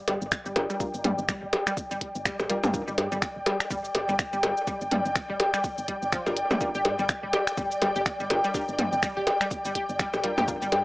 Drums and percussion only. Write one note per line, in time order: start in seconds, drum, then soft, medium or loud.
0.08 closed hi-hat medium
0.08 percussion blips medium
0.22 shaker soft
0.32 finger snap medium
0.32 kick loud
0.32 shaker medium
0.46 shaker soft
0.56 closed hi-hat medium
0.56 percussion blips medium
0.70 shaker soft
0.80 kick loud
0.80 shaker medium
0.94 shaker soft
1.04 closed hi-hat loud
1.04 mid tom medium
1.18 shaker soft
1.29 finger snap medium
1.29 kick loud
1.29 shaker medium
1.53 closed hi-hat medium
1.53 percussion blips medium
1.67 finger snap medium
1.67 shaker soft
1.77 kick loud
1.77 shaker medium
1.91 shaker soft
2.01 kick medium
2.01 closed hi-hat medium
2.15 shaker soft
2.25 finger snap loud
2.25 kick loud
2.25 shaker medium
2.39 percussion blips medium
2.39 shaker soft
2.50 closed hi-hat medium
2.64 mid tom medium
2.64 percussion blips medium
2.64 shaker soft
2.74 kick loud
2.74 shaker medium
2.88 shaker soft
2.98 closed hi-hat loud
2.98 percussion blips medium
3.12 shaker soft
3.22 finger snap medium
3.22 kick loud
3.22 shaker medium
3.46 closed hi-hat medium
3.46 percussion blips medium
3.60 finger snap medium
3.60 shaker soft
3.71 kick loud
3.71 shaker medium
3.85 shaker soft
3.95 closed hi-hat medium
3.95 percussion blips medium
4.09 shaker soft
4.19 finger snap medium
4.19 kick loud
4.19 shaker medium
4.33 shaker soft
4.43 closed hi-hat medium
4.43 percussion blips medium
4.57 shaker soft
4.67 kick loud
4.67 shaker medium
4.81 shaker soft
4.91 closed hi-hat loud
4.91 mid tom medium
5.05 shaker soft
5.16 finger snap medium
5.16 kick loud
5.16 shaker medium
5.40 closed hi-hat medium
5.40 percussion blips medium
5.54 finger snap medium
5.54 shaker soft
5.64 kick loud
5.64 shaker medium
5.78 shaker soft
5.88 kick medium
5.88 closed hi-hat medium
6.02 shaker soft
6.12 finger snap medium
6.12 kick loud
6.12 shaker medium
6.26 percussion blips medium
6.26 shaker soft
6.37 closed hi-hat medium
6.51 mid tom medium
6.51 percussion blips medium
6.51 shaker soft
6.61 kick loud
6.61 shaker medium
6.75 shaker soft
6.85 closed hi-hat medium
6.85 percussion blips medium
6.99 shaker soft
7.09 finger snap medium
7.09 kick loud
7.09 shaker medium
7.33 closed hi-hat medium
7.33 percussion blips medium
7.47 finger snap medium
7.47 shaker soft
7.58 kick loud
7.58 shaker medium
7.71 shaker soft
7.82 closed hi-hat medium
7.82 percussion blips medium
7.96 shaker soft
8.06 finger snap medium
8.06 kick loud
8.06 shaker medium
8.20 shaker soft
8.30 closed hi-hat medium
8.30 percussion blips medium
8.44 shaker soft
8.54 kick loud
8.54 shaker medium
8.68 shaker soft
8.79 closed hi-hat medium
8.79 mid tom medium
8.93 shaker soft
9.03 finger snap medium
9.03 kick loud
9.03 shaker medium
9.27 closed hi-hat medium
9.27 percussion blips medium
9.41 finger snap medium
9.41 shaker soft
9.51 kick loud
9.51 shaker medium
9.65 shaker soft
9.75 kick medium
9.75 closed hi-hat medium
9.89 shaker soft
9.99 finger snap medium
9.99 kick loud
9.99 shaker medium
10.13 percussion blips medium
10.13 shaker soft
10.24 closed hi-hat medium
10.38 mid tom medium
10.38 percussion blips medium
10.38 shaker soft
10.48 kick loud
10.48 shaker medium
10.62 shaker soft
10.72 closed hi-hat medium
10.72 percussion blips medium